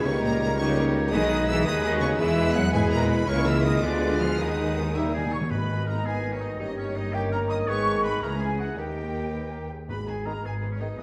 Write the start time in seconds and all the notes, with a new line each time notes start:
0.05 C#2 C#3 D#3 G3 A#3 D#4 G4 A#4 C#5 C#6
0.24 A#2 A#4 A#5
0.42 A#2 A#4 A#5
0.59 C#3 D#3 G3 A#3 D#4 G4 A#4 C#5 C#6
1.12 B1 D#3 G#3 B3 D#4 G#4 B4 D#5 D#6
1.48 E3 E5 E6
1.65 D#2 D#3 G#3 B3 D#4 G#4 B4 D#5 D#6
1.84 D#3 D#5 D#6
1.94 F#4
2.02 C#3 C#5 C#6
2.19 E1 E2 E3 G#3 B3 E4 G#4 B4 E5 E6
2.55 F#3 F#5 F#6
2.73 G#2 G#3 B3 E4 G#4 B4 G#5
2.92 A#2 A#4 A#5
3.09 B2 B4 B5
3.27 C#2 C#3 G#3 A#3 E4 A#4 C#5 C#6
3.47 E3 E5 E6
3.65 D#3 D#5 D#6
3.82 D2 D3 G#3 B3 F4 G#4 B4 D5 D6
4.21 F3 F5 F6
4.38 D#2 D#3 G#3 B3 D#4 G#4 B4 D#5 D#6
4.95 D#3 G3 A#3 D#4 E4 A#4 E5
5.03 D#3
5.10 D#3 G#4
5.15 D#3 G#5
5.26 D#3
5.32 D#3 C#5 C#6
5.41 D#3
5.51 G#1 G#2 D#3 B3 D#4 G#4 B4 D#5 B5
5.87 A#4 A#5
6.05 G#4 B4 G#5
6.32 C#4 C#5
6.41 D#4 D#5
6.59 G1 G2 A#3 C#4 D#4 G4 C#5 D#5
6.77 C#4 C#5
6.95 D#4 D#5
7.13 G4 A#4 G5
7.31 A#4 A#5
7.50 D#5 D#6
7.67 G#1 G#2 D#3 G#3 B3 G#4 B4 C#5 C#6
7.97 A#4
8.03 B4 B5
8.22 C#2 E3 C#4 E4 G#4 A#4 A#5
8.40 G#4 G#5
8.59 F#4 F#5
8.78 D#2 D#3 A#3 D#4 G4 A#4 G5
9.32 B4
9.52 A#4
9.71 G#4
9.89 G#1 G#2 D#3 B3 D#4 G#4 B4 B5
10.06 D#3 B3 D#4 G#4 G#5
10.25 D#3 B3 D#4 G#4 A#4 A#5
10.43 G#1 G#2 D#3 B3 D#4 G#4 B4 G#5
10.62 D#3 B3 D#4
10.71 C#4 C#5
10.79 D#3 B3 D#4 G#4 D#5
10.97 E1 E2 E3 B3 G#4 D#5 D#6